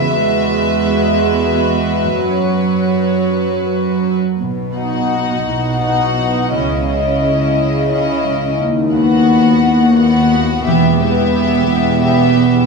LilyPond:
<<
  \new Staff \with { instrumentName = "Violin section" } { \time 6/8 \key b \major \tempo 4. = 58 r2. | r2. | r8 fis''4. fis''4 | dis''8 dis''4. dis''4 |
r8 fis''4. fis''4 | e''8 e''4. e''4 | }
  \new Staff \with { instrumentName = "Violin section" } { \time 6/8 \key b \major << { e''2. | cis''2~ cis''8 r8 | r8 fis'4. fis'4 | e'8 e'4. e'4 |
r8 fis'4. fis'4 | g'8 g'4. g'4 | } \\ { b'2.~ | b'2~ b'8 r8 | r2. | r2. |
r2. | r2. | } >> }
  \new Staff \with { instrumentName = "Harp" } { \time 6/8 \key b \major << { <e, b e' fis' gis'>2. | <fis, b fis' cis''>2.~ | <fis, b fis' cis''>2. | r2. |
r2. | r2. | } \\ { r2. | r2. | b,8 dis''8 fis'8 e'8 fis'8 b8 | cis8 dis''8 e'8 cis'8 e'8 gis8 |
dis'8 b'8 fis'8 e'8 fis'8 b8 | e8 b'8 g'8 fis''8 g'8 b8 | } >> }
  \new Staff \with { instrumentName = "Viola section" } { \time 6/8 \key b \major << { fis'2.~ | fis'2~ fis'8 r8 | r2. | r2. |
r2. | r2. | } \\ { gis2. | fis2~ fis8 r8 | r8 dis'4. dis'4 | cis'8 cis'4. cis'4 |
r8 b4. b4 | b8 b4. b4 | } >> }
  \new Staff \with { instrumentName = "Cello section" } { \clef bass \time 6/8 \key b \major e,2. | fis,2~ fis,8 r8 | b,4. b,4. | cis4. cis4. |
dis,4. dis,4. | e,4. e,4. | }
  \new Staff \with { instrumentName = "Double bass section" } { \clef bass \time 6/8 \key b \major r2. | r2. | b,,4. b,,4. | cis,4. cis,4. |
dis,4. dis,4. | e,,4. e,,4. | }
>>